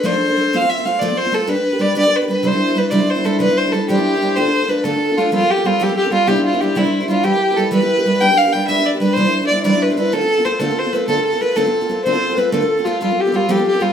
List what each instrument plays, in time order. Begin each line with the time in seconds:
0.03 steel-string acoustic guitar F3 A3 D4 A4 C5, fiddle C5
0.13 steel-string acoustic guitar D4 A4 C5
0.28 steel-string acoustic guitar D4 A4 C5
0.37 steel-string acoustic guitar A3 D4 A4 C5
0.53 steel-string acoustic guitar F3 A3 C4 F4 C5, fiddle F5
0.61 steel-string acoustic guitar C4 F4 C5
0.70 fiddle E5
0.77 steel-string acoustic guitar C4 F4 C5
0.85 steel-string acoustic guitar A3 C4 F4 C5, fiddle F5
1.00 steel-string acoustic guitar F3 A3 C4 F4 C5, fiddle D5
1.08 steel-string acoustic guitar C4 F4 C5
1.17 fiddle C5
1.25 steel-string acoustic guitar C4 F4 C5
1.32 steel-string acoustic guitar A3 C4 F4 C5, fiddle A4
1.47 steel-string acoustic guitar G3 D4 G4 B4, fiddle B4
1.55 steel-string acoustic guitar D4 G4 B4
1.71 steel-string acoustic guitar D4 G4 B4
1.79 steel-string acoustic guitar G3 D4 G4 B4, fiddle D5
1.95 steel-string acoustic guitar G3 D4 G4 B4, fiddle D5
2.04 steel-string acoustic guitar D4 G4 B4
2.16 fiddle B4
2.22 steel-string acoustic guitar D4 G4 B4
2.28 steel-string acoustic guitar G3 D4 G4 B4, fiddle B4
2.43 steel-string acoustic guitar C3 E3 G3 D4 E4 C5
2.47 fiddle C5
2.52 steel-string acoustic guitar G3 D4 E4 C5
2.67 steel-string acoustic guitar G3 D4 E4 C5
2.75 steel-string acoustic guitar G3 D4 E4 C5, fiddle B4
2.91 steel-string acoustic guitar C3 E3 G3 D4 E4 C5, fiddle D5
2.99 steel-string acoustic guitar G3 D4 E4 C5
3.10 fiddle C5
3.15 steel-string acoustic guitar G3 D4 E4 C5
3.24 steel-string acoustic guitar G3 D4 E4 C5, fiddle A4
3.39 steel-string acoustic guitar C3 E3 G3 D4 E4 C5, fiddle B4
3.49 steel-string acoustic guitar G3 D4 E4 C5
3.58 fiddle C5
3.66 steel-string acoustic guitar G3 D4 E4 C5
3.73 steel-string acoustic guitar G3 D4 E4 C5, fiddle A4
3.88 steel-string acoustic guitar C3 E3 G3 D4 E4 C5, fiddle G4
3.98 steel-string acoustic guitar G3 D4 E4 C5
4.14 steel-string acoustic guitar G3 D4 E4 C5
4.21 steel-string acoustic guitar G3 D4 E4 C5
4.36 steel-string acoustic guitar D3 A3 D4 F4 A4, fiddle C5
4.45 steel-string acoustic guitar D4 F4 A4
4.61 steel-string acoustic guitar D4 F4 A4
4.68 steel-string acoustic guitar A3 D4 F4 A4, fiddle B4
4.84 steel-string acoustic guitar D3 A3 D4 F4 A4, fiddle A4
4.93 steel-string acoustic guitar D4 F4 A4
5.09 steel-string acoustic guitar D4 F4 A4
5.18 steel-string acoustic guitar A3 D4 F4 A4, fiddle F4
5.32 steel-string acoustic guitar F3 G3 C4 F4 A4, fiddle F4
5.40 steel-string acoustic guitar C4 F4 A4
5.51 fiddle G4
5.56 steel-string acoustic guitar C4 F4 A4
5.64 steel-string acoustic guitar G3 C4 F4 A4, fiddle F4
5.79 steel-string acoustic guitar F3 G3 C4 F4 A4, fiddle G4
5.89 steel-string acoustic guitar C4 F4 A4
5.97 fiddle G4
6.04 steel-string acoustic guitar C4 F4 A4
6.10 steel-string acoustic guitar G3 C4 F4 A4, fiddle F4
6.27 steel-string acoustic guitar C3 E3 G3 D4 E4 C5, fiddle G4
6.36 steel-string acoustic guitar G3 D4 E4 C5
6.46 fiddle F4
6.53 steel-string acoustic guitar G3 D4 E4 C5
6.61 steel-string acoustic guitar G3 D4 E4 C5, fiddle G4
6.75 steel-string acoustic guitar C3 E3 G3 D4 E4 C5, fiddle E4
6.84 steel-string acoustic guitar G3 D4 E4 C5
7.00 steel-string acoustic guitar G3 D4 E4 C5
7.08 steel-string acoustic guitar G3 D4 E4 C5, fiddle F4
7.23 steel-string acoustic guitar E3 G3 E4 G4 B4, fiddle G4
7.34 steel-string acoustic guitar E4 G4 B4
7.50 steel-string acoustic guitar E4 G4 B4
7.57 steel-string acoustic guitar G3 E4 G4 B4, fiddle A4
7.71 steel-string acoustic guitar E3 G3 E4 G4 B4, fiddle B4
7.80 steel-string acoustic guitar E4 G4 B4
7.97 steel-string acoustic guitar E4 G4 B4
8.05 steel-string acoustic guitar G3 E4 G4 B4
8.21 steel-string acoustic guitar G3 D4 G4 B4, fiddle G5
8.30 steel-string acoustic guitar D4 G4 B4
8.38 fiddle F5
8.46 steel-string acoustic guitar D4 G4 B4
8.53 steel-string acoustic guitar G3 D4 G4 B4, fiddle G5
8.67 steel-string acoustic guitar G3 D4 G4 B4, fiddle E5
8.77 steel-string acoustic guitar D4 G4 B4
8.86 fiddle D5
8.93 steel-string acoustic guitar D4 G4 B4
8.99 steel-string acoustic guitar G3 D4 G4 B4, fiddle B4
9.14 steel-string acoustic guitar C3 E3 G3 D4, fiddle C5
9.18 steel-string acoustic guitar E4 C5
9.25 steel-string acoustic guitar G3 D4 E4 C5
9.42 steel-string acoustic guitar G3 D4 E4 C5
9.47 steel-string acoustic guitar G3, fiddle D5
9.51 steel-string acoustic guitar D4 E4 C5
9.63 steel-string acoustic guitar C3 E3 G3 D4 E4 C5, fiddle D5
9.73 steel-string acoustic guitar G3 D4 E4 C5
9.82 fiddle B4
9.90 steel-string acoustic guitar G3 D4 E4 C5
9.97 steel-string acoustic guitar G3 D4 E4 C5, fiddle B4
10.12 steel-string acoustic guitar D3 A3 C4 F4 A4, fiddle A4
10.21 steel-string acoustic guitar C4 F4 A4
10.38 steel-string acoustic guitar C4 F4 A4
10.45 steel-string acoustic guitar A3 C4 F4 A4, fiddle C5
10.59 steel-string acoustic guitar D3 A3 C4 F4 A4, fiddle A4
10.69 steel-string acoustic guitar C4 F4 A4
10.79 fiddle C5
10.85 steel-string acoustic guitar C4 F4 A4
10.93 steel-string acoustic guitar A3 C4 F4 A4, fiddle B4
11.08 steel-string acoustic guitar D3 A3 C4 F4 A4, fiddle A4
11.16 steel-string acoustic guitar C4 F4 A4
11.25 fiddle A4
11.33 steel-string acoustic guitar C4 F4 A4
11.41 steel-string acoustic guitar A3 C4 F4 A4, fiddle B4
11.56 steel-string acoustic guitar D3 A3 C4 F4 A4, fiddle A4
11.65 steel-string acoustic guitar C4 F4 A4
11.81 steel-string acoustic guitar C4 F4 A4
11.89 steel-string acoustic guitar A3 C4 F4 A4
12.03 steel-string acoustic guitar D3 A3 C4 F4 A4, flute C5, fiddle C5
12.12 steel-string acoustic guitar C4 F4 A4
12.30 steel-string acoustic guitar C4 F4 A4
12.36 steel-string acoustic guitar A3 C4 F4 A4, flute B4, fiddle B4
12.52 steel-string acoustic guitar D3 A3 C4 F4 A4, flute A4, fiddle A4
12.61 steel-string acoustic guitar C4 F4 A4
12.77 steel-string acoustic guitar C4 F4 A4
12.85 steel-string acoustic guitar A3 C4 F4 A4, fiddle F4, flute F4
13.01 steel-string acoustic guitar F3 G3 C4 F4 A4, flute F4, fiddle F4
13.10 steel-string acoustic guitar C4 F4 A4
13.19 flute G4, fiddle G4
13.25 steel-string acoustic guitar C4 F4 A4
13.32 steel-string acoustic guitar G3 C4 F4 A4, fiddle F4
13.48 steel-string acoustic guitar F3 G3 C4 F4 A4, flute G4, fiddle G4
13.57 steel-string acoustic guitar C4 F4 A4
13.68 fiddle G4
13.74 steel-string acoustic guitar C4 F4 A4
13.80 steel-string acoustic guitar G3 C4 F4 A4, flute F4, fiddle F4